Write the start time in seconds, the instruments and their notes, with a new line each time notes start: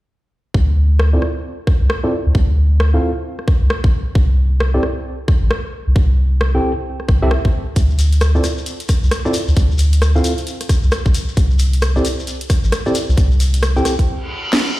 0.54 sub bass D2, kick
0.99 cross-stick
1.13 tine electric piano C4 E4 F4 A4 D5
1.22 cross-stick
1.67 kick, cross-stick
1.81 sub bass C2
1.90 cross-stick
2.04 tine electric piano C4 E4 F4 A4 D5
2.26 sub bass D2
2.35 sub bass D2, kick
2.80 cross-stick
2.94 tine electric piano C4 E4 F4 A4 F5
3.39 cross-stick
3.48 kick, cross-stick
3.62 sub bass C2
3.70 cross-stick
3.84 sub bass C2, kick
4.15 sub bass C2, kick
4.60 cross-stick
4.74 tine electric piano C4 E4 G4 A4 D5
4.83 cross-stick
5.28 kick, cross-stick
5.42 sub bass A1
5.51 cross-stick
5.87 sub bass C2
5.96 sub bass C2, kick
6.41 cross-stick
6.55 tine electric piano C4 E4 G4 A4 G5
7.00 cross-stick
7.08 sub bass C2, kick, cross-stick
7.22 sub bass C2, tine electric piano C4 E4 G4 A4 E5
7.31 cross-stick
7.45 sub bass C2, kick
7.76 sub bass D2, kick, closed hi-hat, shekere
7.90 shekere
7.99 open hi-hat, shekere
8.13 closed hi-hat, shekere
8.21 cross-stick, closed hi-hat, shekere
8.35 tine electric piano C4 E4 F4 A4 D5, shekere
8.44 cross-stick, open hi-hat, shekere
8.58 shekere
8.66 closed hi-hat, shekere
8.80 closed hi-hat, shekere
8.89 kick, cross-stick, open hi-hat, shekere
9.03 sub bass C2, shekere
9.11 cross-stick, closed hi-hat, shekere
9.25 tine electric piano C4 E4 F4 A4 D5, shekere
9.34 open hi-hat, shekere
9.48 sub bass D2, shekere
9.56 sub bass D2, kick, closed hi-hat, shekere
9.71 shekere
9.78 open hi-hat, shekere
9.93 closed hi-hat, shekere
10.02 cross-stick, closed hi-hat, shekere
10.16 tine electric piano C4 E4 F4 A4 F5, shekere
10.24 open hi-hat, shekere
10.38 closed hi-hat, shekere
10.47 closed hi-hat, shekere
10.61 cross-stick, closed hi-hat, shekere
10.69 kick, cross-stick, open hi-hat, shekere
10.83 sub bass C2, shekere
10.92 cross-stick, open hi-hat, shekere
11.05 sub bass C2, kick, shekere
11.14 open hi-hat, shekere
11.28 shekere
11.37 sub bass C2, kick, closed hi-hat, shekere
11.51 shekere
11.59 open hi-hat, shekere
11.73 closed hi-hat, shekere
11.82 cross-stick, closed hi-hat, shekere
11.96 tine electric piano C4 E4 G4 A4 D5, shekere
12.05 open hi-hat, shekere
12.19 shekere
12.27 closed hi-hat, shekere
12.41 closed hi-hat, shekere
12.50 kick, cross-stick, open hi-hat, shekere
12.64 sub bass A1, shekere
12.72 cross-stick, closed hi-hat, shekere
12.86 tine electric piano C4 E4 G4 A4 D5, shekere
12.95 open hi-hat, shekere
13.09 sub bass C2, shekere
13.18 sub bass C2, kick, closed hi-hat, shekere
13.31 shekere
13.40 open hi-hat, shekere
13.54 closed hi-hat, shekere
13.63 cross-stick, closed hi-hat, shekere
13.76 tine electric piano C4 E4 G4 A4 G5, shekere
13.85 cross-stick, open hi-hat, shekere
13.99 kick, closed hi-hat, shekere
14.08 reverse cymbal
14.53 snare